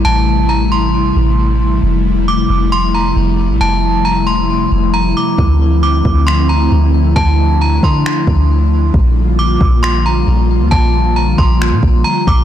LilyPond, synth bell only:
\new Staff \with { instrumentName = "Synth bell" } { \time 4/4 \key d \minor \tempo 4 = 135 a''4 bes''8 c'''2~ c'''8 | r4 d'''4 c'''8 bes''8 r4 | a''4 bes''8 c'''4. bes''8 d'''8 | r4 d'''4 c'''8 bes''8 r4 |
a''4 bes''8 c'''2~ c'''8 | r4 d'''4 c'''8 bes''8 r4 | a''4 bes''8 c'''4. bes''8 d'''8 | }